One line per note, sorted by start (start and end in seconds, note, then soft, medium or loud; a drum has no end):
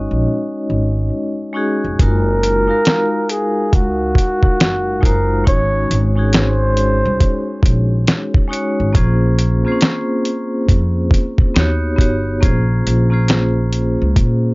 0.00 1.53 G#3 medium
0.00 1.54 C#4 medium
0.00 1.55 D#4 medium
0.00 1.56 F#4 medium
0.00 2.01 C#5 loud
0.00 0.65 D#5 medium
0.11 0.24 A#1 medium
0.70 1.09 G#1 medium
1.53 1.93 G#3 medium
1.53 1.93 C#4 medium
1.53 1.94 D#4 medium
1.53 1.94 F#4 medium
1.53 1.95 G#4 medium
1.84 1.98 F1 medium
1.99 2.67 F#1 loud
1.99 2.57 G#3 medium
1.99 2.58 D#4 medium
1.99 2.58 F4 medium
1.99 2.59 F#4 medium
1.99 3.32 A#4 loud
1.99 2.59 A#4 medium
1.99 kick loud
1.99 closed hi-hat medium
2.43 closed hi-hat medium
2.67 4.11 G#3 medium
2.67 4.11 D#4 medium
2.67 4.12 F#4 medium
2.67 4.12 A#4 medium
2.67 4.12 F5 medium
2.85 snare loud
2.85 closed hi-hat medium
3.29 3.76 G#4 medium
3.29 closed hi-hat medium
3.73 4.13 C#2 medium
3.73 5.06 F#4 medium
3.73 kick loud
3.73 closed hi-hat medium
4.15 kick medium
4.15 closed hi-hat medium
4.43 kick medium
4.60 5.00 F#1 medium
4.60 snare loud
4.60 closed hi-hat medium
5.01 5.48 F#1 medium
5.01 5.41 G#3 medium
5.01 5.41 D#4 medium
5.01 5.42 F4 medium
5.01 5.42 F#4 medium
5.01 5.42 C5 medium
5.01 kick medium
5.05 5.47 A#4 medium
5.05 closed hi-hat medium
5.44 5.87 G#1 loud
5.44 6.04 G#3 medium
5.44 6.04 C#4 medium
5.44 6.05 D#4 medium
5.44 6.05 F#4 medium
5.44 6.05 C#5 medium
5.44 6.08 C#5 loud
5.44 kick loud
5.44 closed hi-hat medium
5.91 7.01 G#1 medium
5.91 closed hi-hat medium
6.16 7.59 G#3 medium
6.16 7.59 C#4 medium
6.16 7.60 D#4 medium
6.16 7.60 F#4 medium
6.16 7.61 G#4 medium
6.33 7.61 C5 loud
6.33 snare loud
6.33 closed hi-hat medium
6.77 closed hi-hat medium
7.05 7.19 C2 medium
7.20 kick medium
7.20 closed hi-hat medium
7.63 8.03 A#1 medium
7.63 kick medium
7.63 closed hi-hat medium
8.07 snare medium
8.07 closed hi-hat medium
8.34 kick medium
8.48 8.88 G#3 medium
8.48 8.89 C#4 medium
8.48 8.89 D#4 medium
8.48 8.89 F#4 medium
8.48 8.90 C#5 medium
8.53 closed hi-hat medium
8.80 8.94 G#1 medium
8.93 9.62 A#1 loud
8.93 9.52 A#3 medium
8.93 9.53 C#4 medium
8.93 9.53 F4 medium
8.93 9.53 G#4 medium
8.93 9.54 C5 loud
8.93 kick loud
8.93 closed hi-hat medium
9.39 closed hi-hat medium
9.65 11.07 A#3 medium
9.65 9.70 C4 medium
9.65 11.08 F4 medium
9.65 11.09 G#4 medium
9.65 11.09 C5 loud
9.72 11.11 C#4 medium
9.81 snare loud
9.81 closed hi-hat medium
10.25 closed hi-hat medium
10.69 11.08 F2 medium
10.69 kick medium
10.69 closed hi-hat medium
11.11 kick medium
11.11 closed hi-hat medium
11.38 kick medium
11.54 11.95 D#2 medium
11.54 11.94 B3 medium
11.54 11.94 D#4 medium
11.54 11.95 F#4 medium
11.54 11.95 G4 medium
11.54 11.95 C#5 medium
11.54 snare medium
11.54 closed hi-hat medium
11.96 12.39 G1 medium
11.96 12.36 B3 medium
11.96 12.37 D#4 medium
11.96 12.37 F#4 medium
11.96 12.38 G4 medium
11.96 12.38 C#5 medium
11.96 kick medium
12.01 closed hi-hat medium
12.41 12.82 A#1 loud
12.41 13.00 A#3 medium
12.41 13.00 C#4 medium
12.41 13.01 F4 medium
12.41 13.01 G#4 medium
12.41 13.02 C5 medium
12.41 kick loud
12.41 closed hi-hat medium
12.87 13.97 A#1 medium
12.87 closed hi-hat medium
13.10 14.54 A#3 medium
13.10 14.54 C#4 medium
13.10 14.54 F4 medium
13.10 14.54 G#4 medium
13.10 14.54 C5 medium
13.28 snare loud
13.28 closed hi-hat medium
13.73 closed hi-hat medium
14.02 14.15 C#2 medium
14.16 14.54 A#2 medium
14.16 kick medium
14.16 closed hi-hat medium